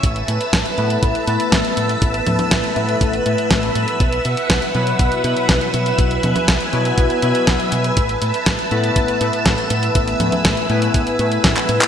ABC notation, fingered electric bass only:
X:1
M:4/4
L:1/8
Q:1/4=121
K:Alyd
V:1 name="Fingered electric bass" clef=bass
A,,, A,, A,,, A,, A,,, A,, A,,, A,, | A,,, A,, A,,, A,, A,,, A,, A,,, A,, | B,,, B,, B,,, B,, B,,, B,, B,,, B,, | B,,, B,, B,,, B,, B,,, B,, B,,, B,, |
A,,, A,, A,,, A,, A,,, A,, A,,, A,, | A,,, A,, A,,, A,, A,,, A,, A,,, A,, |]